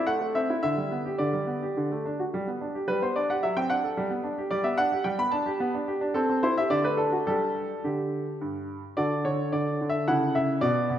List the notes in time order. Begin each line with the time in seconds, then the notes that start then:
0.07 A3 F#5
0.21 A3
0.35 C4 E5
0.50 E4
0.63 D3 E5
0.77 G3
0.91 B3
1.06 G4
1.18 D3 D5
1.33 G3
1.47 B3
1.63 G4
1.77 D3
1.92 A3
2.06 D4
2.20 F#4
2.34 G3
2.47 B3
2.61 D4
2.75 G4
2.88 G3 B4
3.02 B3 C5
3.16 D4 D5
3.30 G4 F#5
3.43 F#3 E5
3.57 C4 G5
3.70 D4 F#5
3.84 A4
3.97 G3
4.11 B3
4.24 D4
4.38 G4
4.51 G3 D5
4.64 B3 E5
4.78 D4 F#5
4.92 G4
5.04 G3 G5
5.19 B3 B5
5.31 D4 A5
5.46 G4
5.60 B3
5.74 D4
5.88 G4
6.01 D4
6.14 C4 A4
6.30 C4
6.43 E4 C5
6.58 G4 E5
6.70 D3 D5
6.84 A3 B4
6.97 D4 A4
7.12 F#4
7.27 G3 D4 G4 A4
7.84 D3 G4
8.41 G2
8.97 D3 F#4 A4 D5
9.25 D3 C#5
9.52 D3 D5
9.81 D3
9.90 E5
10.08 C#3 E4 A4 F#5
10.35 C#3 E5
10.61 B2 B3 F#4 D5
10.90 B2